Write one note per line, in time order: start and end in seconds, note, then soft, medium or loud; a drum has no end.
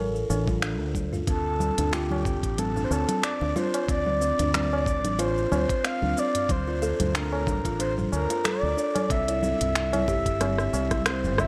0.00 0.23 A1 medium
0.00 0.14 A#4 medium
0.15 cabasa soft
0.30 0.80 A1 medium
0.30 0.47 D4 medium
0.30 tabla na medium
0.30 cabasa medium
0.48 0.62 F4 medium
0.48 kick loud
0.48 low conga medium
0.48 cabasa soft
0.62 0.79 D4 medium
0.62 finger snap loud
0.62 cabasa soft
0.80 1.21 D2 loud
0.95 kick medium
0.95 tabla tin soft
0.95 low conga medium
0.95 cabasa medium
1.13 1.27 F4 medium
1.13 tabla ge medium
1.13 cabasa soft
1.27 1.70 D2 medium
1.27 1.45 C4 medium
1.27 1.95 A4 medium
1.27 kick loud
1.27 closed hi-hat soft
1.27 cabasa soft
1.60 low conga medium
1.60 cabasa medium
1.78 2.43 D2 medium
1.78 1.92 D4 medium
1.78 closed hi-hat soft
1.78 tabla ge medium
1.78 cabasa soft
1.93 2.10 F4 medium
1.93 2.60 G4 medium
1.93 finger snap medium
1.93 closed hi-hat soft
1.93 cabasa soft
2.11 tabla na medium
2.11 low conga medium
2.25 2.43 C4 medium
2.25 kick medium
2.25 tabla ge medium
2.25 cabasa medium
2.43 2.84 A1 medium
2.43 kick medium
2.43 closed hi-hat soft
2.43 cabasa soft
2.58 2.75 C4 medium
2.58 2.84 A4 medium
2.58 closed hi-hat medium
2.58 low conga medium
2.58 cabasa soft
2.76 2.90 D4 medium
2.76 tabla ge medium
2.76 cabasa soft
2.84 2.93 C5 medium
2.90 3.03 D2 medium
2.90 3.08 C4 medium
2.90 3.23 A4 medium
2.90 tabla na medium
2.90 cabasa medium
3.09 closed hi-hat soft
3.09 low conga medium
3.09 cabasa soft
3.23 3.54 D5 loud
3.23 finger snap medium
3.23 closed hi-hat medium
3.23 cabasa soft
3.41 3.51 D2 medium
3.41 3.55 D4 medium
3.41 tabla tin soft
3.56 3.73 F4 medium
3.56 3.87 C5 loud
3.56 tabla tin soft
3.56 low conga medium
3.56 cabasa medium
3.74 closed hi-hat soft
3.74 tabla na medium
3.74 cabasa soft
3.88 4.30 D2 medium
3.88 4.06 C4 medium
3.88 4.51 D5 loud
3.88 kick loud
3.88 closed hi-hat medium
3.88 cabasa soft
4.07 tabla tin medium
4.07 low conga medium
4.21 4.38 C4 medium
4.21 cabasa medium
4.39 5.04 D2 medium
4.39 4.53 D4 medium
4.39 closed hi-hat soft
4.39 tabla ge medium
4.39 cabasa soft
4.54 4.71 C4 medium
4.54 5.21 D5 loud
4.54 finger snap medium
4.54 closed hi-hat medium
4.54 low conga medium
4.54 cabasa soft
4.73 tabla na medium
4.86 kick loud
4.86 tabla tin soft
4.86 tabla ge medium
4.86 cabasa medium
5.04 5.44 A1 medium
5.04 5.18 D4 medium
5.04 closed hi-hat soft
5.04 low conga medium
5.04 cabasa soft
5.19 5.36 F4 loud
5.19 5.52 C5 loud
5.19 closed hi-hat medium
5.19 tabla na medium
5.19 cabasa soft
5.38 cabasa soft
5.52 5.64 D2 medium
5.52 5.69 C4 medium
5.52 5.88 C5 loud
5.52 tabla na medium
5.52 low conga medium
5.52 cabasa medium
5.69 kick loud
5.69 closed hi-hat soft
5.69 cabasa soft
5.84 6.01 C4 medium
5.84 6.20 F5 loud
5.84 finger snap medium
5.84 closed hi-hat medium
5.84 cabasa soft
6.02 6.13 D2 medium
6.02 6.16 D4 medium
6.02 low conga medium
6.17 6.34 C4 medium
6.17 6.52 D5 loud
6.17 tabla tin soft
6.17 cabasa medium
6.35 closed hi-hat soft
6.35 tabla ge medium
6.35 cabasa soft
6.49 6.91 D2 medium
6.49 7.09 C5 loud
6.49 kick loud
6.49 closed hi-hat medium
6.49 low conga medium
6.49 cabasa soft
6.68 6.81 F4 medium
6.82 6.99 A4 loud
6.82 cabasa medium
7.00 7.65 D2 medium
7.00 closed hi-hat soft
7.00 low conga medium
7.00 tabla ge medium
7.00 cabasa soft
7.09 7.18 C5 medium
7.15 7.32 D4 medium
7.15 7.80 A#4 loud
7.15 finger snap loud
7.15 closed hi-hat medium
7.15 cabasa soft
7.32 tabla na medium
7.47 7.64 D4 medium
7.47 kick loud
7.47 low conga medium
7.47 tabla ge medium
7.47 cabasa medium
7.65 8.05 A1 medium
7.65 7.79 F4 medium
7.65 kick medium
7.65 closed hi-hat soft
7.65 cabasa soft
7.79 7.97 D4 medium
7.79 7.94 C5 loud
7.79 closed hi-hat medium
7.79 cabasa soft
7.98 tabla ge medium
7.98 low conga medium
7.98 cabasa soft
8.12 8.25 D2 medium
8.12 8.47 A#4 medium
8.12 tabla na medium
8.12 cabasa medium
8.30 8.44 F4 medium
8.30 closed hi-hat soft
8.30 cabasa soft
8.45 8.62 A4 loud
8.45 9.11 D5 loud
8.45 finger snap medium
8.45 closed hi-hat medium
8.45 low conga medium
8.45 cabasa soft
8.63 8.73 D2 medium
8.63 tabla tin medium
8.77 8.94 D4 medium
8.77 tabla tin medium
8.77 cabasa medium
8.95 closed hi-hat soft
8.95 tabla na medium
8.95 low conga medium
8.95 cabasa soft
9.10 9.52 C2 medium
9.10 9.27 C4 medium
9.10 11.02 E5 loud
9.10 kick loud
9.10 closed hi-hat medium
9.10 cabasa soft
9.28 9.42 E4 medium
9.28 closed hi-hat soft
9.28 tabla tin medium
9.28 cabasa soft
9.43 9.60 C4 medium
9.43 low conga medium
9.43 cabasa medium
9.61 10.28 C2 medium
9.61 closed hi-hat soft
9.61 tabla ge medium
9.61 cabasa soft
9.75 finger snap loud
9.75 closed hi-hat medium
9.75 cabasa soft
9.93 10.07 E4 medium
9.93 closed hi-hat soft
9.93 tabla na medium
9.93 low conga medium
9.93 cabasa soft
10.08 10.25 G4 loud
10.08 kick medium
10.08 tabla tin soft
10.08 tabla ge medium
10.08 cabasa medium
10.26 10.66 G1 medium
10.26 kick medium
10.26 closed hi-hat soft
10.26 cabasa soft
10.41 10.58 C4 medium
10.41 cross-stick medium
10.41 closed hi-hat medium
10.41 tabla na medium
10.41 low conga medium
10.41 cabasa soft
10.58 cross-stick medium
10.58 cabasa soft
10.73 11.25 C2 medium
10.73 10.91 C4 medium
10.73 tabla na medium
10.73 cabasa medium
10.91 11.05 E4 medium
10.91 kick loud
10.91 cross-stick medium
10.91 closed hi-hat soft
10.91 low conga medium
10.91 cabasa soft
11.06 11.23 C4 medium
11.06 11.41 C5 medium
11.06 finger snap loud
11.06 cross-stick medium
11.06 closed hi-hat medium
11.06 cabasa soft
11.24 11.47 G1 loud
11.24 cabasa soft
11.38 11.47 E5 medium
11.38 kick medium
11.38 cross-stick medium
11.38 tabla tin medium
11.38 low conga medium
11.38 cabasa medium